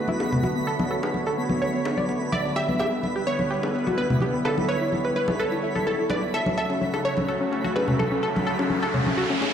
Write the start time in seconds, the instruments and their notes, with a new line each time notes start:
Already playing: supersaw synth D3 A3 B3 F#4 B4, synth texture B5
0.08 synth arpeggio sound E4, high conga
0.20 synth arpeggio sound B3, high bongo
0.32 synth arpeggio sound B3, low conga
0.43 synth arpeggio sound F#4, high bongo, high conga
0.56 synth arpeggio sound B3
0.67 synth arpeggio sound A4, supersaw synth C#5
0.79 synth arpeggio sound B3, high bongo, high conga
0.91 synth arpeggio sound A4
1.03 synth arpeggio sound B3, high bongo
1.14 synth arpeggio sound B3, high conga
1.26 synth arpeggio sound A4, high bongo
1.38 synth arpeggio sound B3
1.49 synth arpeggio sound B3, high conga
1.62 synth arpeggio sound C#5, high bongo
1.74 synth arpeggio sound B3
1.85 synth arpeggio sound B3, high bongo
1.97 synth arpeggio sound D5, high conga
2.09 synth arpeggio sound B3, high bongo
2.21 synth arpeggio sound B3
2.32 synth pluck D5, synth arpeggio sound E5, high conga
2.45 synth arpeggio sound B3, high bongo
2.56 supersaw synth G3 B3 E4 B4, synth arpeggio sound G4, synth pluck E5, high bongo
2.69 synth arpeggio sound B3, high conga
2.80 synth arpeggio sound G4, synth pluck E5, high bongo
2.92 synth arpeggio sound B3
3.03 synth arpeggio sound B3, high bongo, high conga
3.16 synth arpeggio sound G4
3.27 synth arpeggio sound B3, synth pluck C#5
3.39 synth arpeggio sound B3, high bongo, high conga
3.51 synth arpeggio sound G4
3.63 synth arpeggio sound B3, high bongo
3.74 synth arpeggio sound B3
3.87 synth arpeggio sound F#4, high bongo, high conga
3.98 synth arpeggio sound B3, synth pluck B4
4.10 synth arpeggio sound B3, low conga
4.20 synth arpeggio sound G4, high bongo, high conga
4.34 synth arpeggio sound B3
4.45 synth pluck A4, synth arpeggio sound B4, supersaw synth C#5, high bongo
4.58 synth arpeggio sound E4, high conga
4.69 synth arpeggio sound B4, synth pluck C#5, high bongo
4.81 synth arpeggio sound E4
4.92 synth arpeggio sound E4, high conga
5.05 synth arpeggio sound B4, high bongo
5.16 synth arpeggio sound E4, synth pluck B4
5.28 synth arpeggio sound E4, high bongo, high conga
5.39 synth pluck A4, synth arpeggio sound B4
5.52 synth arpeggio sound E4, high bongo
5.63 synth arpeggio sound E4
5.75 synth arpeggio sound A4, high conga
5.87 synth arpeggio sound E4, synth pluck A4, high bongo
5.99 synth arpeggio sound E4
6.10 synth arpeggio sound B4, synth pluck D5, high bongo, high conga
6.23 synth arpeggio sound E4
6.34 supersaw synth C#3 F#3 A3 F#4 A4, synth arpeggio sound A4, synth pluck E5, riser, high bongo
6.46 synth arpeggio sound C#4, high conga
6.58 synth arpeggio sound A4, synth pluck E5
6.70 synth arpeggio sound C#4, high bongo
6.81 synth arpeggio sound C#4, high conga
6.94 synth arpeggio sound A4, high bongo
7.05 synth arpeggio sound C#4, synth pluck C#5
7.17 synth arpeggio sound C#4, high bongo, high conga
7.28 synth arpeggio sound A4
7.41 synth arpeggio sound C#4
7.52 synth arpeggio sound C#4, high bongo
7.64 synth arpeggio sound F#4, high conga
7.76 synth arpeggio sound C#4, synth pluck B4, high bongo
7.88 synth arpeggio sound C#4, low conga
7.99 synth pluck A4, synth arpeggio sound A4, high bongo, high conga
8.12 synth arpeggio sound C#4
8.23 synth arpeggio sound A4
8.35 synth arpeggio sound C#4, high bongo, high conga
8.47 synth arpeggio sound A4
8.59 synth arpeggio sound C#4, high bongo
8.70 synth arpeggio sound C#4, high conga
8.82 synth arpeggio sound A4, high bongo
8.94 synth arpeggio sound C#4, low conga
9.06 synth arpeggio sound C#4, high conga
9.17 synth arpeggio sound F#4, high bongo
9.30 synth arpeggio sound C#4
9.41 synth arpeggio sound C#4, high bongo